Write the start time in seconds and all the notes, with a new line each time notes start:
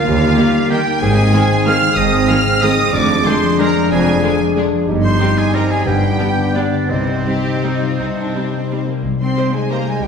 Already playing: A#3 F4 F5
0.05 D#2 D#3 G3 G4
0.20 A#3
0.36 D#3 A#3 G4
0.53 A#3
0.70 D#3 A#3 D#4 G4 G5
0.85 A#3
1.00 G#1 G#2 G#3 C4 G#4 G#5
1.16 D#3
1.32 D#3 G#3 C4 D#4 G#4
1.50 D#3
1.65 D#3 G#3 C4 G#4 F5 F6
1.81 D#3
1.96 G#1 G#2 C4 G#4 D#5 D#6
2.11 C4
2.28 D#3 G#3 C4 D#4 G#4 F5 F6
2.45 D#3
2.61 D#3 G#3 C4 G#4 D#5 D#6
2.78 D#3
2.93 F1 F2 G#3 D4 G#4 D5 D6
3.09 F3
3.25 D3 G#3 D4 G#4 C5 C6
3.43 F3
3.59 D3 G#3 D4 G#4 A#4 A#5
3.76 F3
3.91 F1 F2 D4 G#4 G#5
4.07 G#3
4.22 D3 G#3 D4 G#4
4.40 F3
4.56 D3 G#3 D4 G#4
4.72 F3
4.87 G1 G2 G3 D#4 G4
5.03 G3 C5 C6
5.20 G3 C4 D#4 G4
5.37 G3 G#4 G#5
5.54 G3 C4 D#4 G4 A#4 A#5
5.70 G3 G#4 G#5
5.86 G1 G2 B3 D4 G4 G5
6.02 D3
6.18 G3 B3 D4 G4
6.37 D3
6.54 G3 B3 D4 G4 D5
6.72 D3
6.89 C2 C3 C4 D#4 G4 C5
7.07 G3
7.26 G3 C4 D#4 G4
7.45 G3
7.63 G3 C4 D#4
7.82 G3 F4
7.99 C2 C3 D#4
8.16 C4 D4
8.35 G3 C4 D#4
8.53 G3 C4
8.71 G3 C4
8.89 G3 A#3
9.05 C2 C3
9.20 G3 C4 C5 C6
9.37 D#4 G4 C5 D#5
9.54 G3 G#3 G#4 G#5
9.70 A#3 C4 G4 A#4 C5 D#5 A#5
9.86 G3 G#3 G#4 G#5
10.02 C2 C3 G3 G4 G5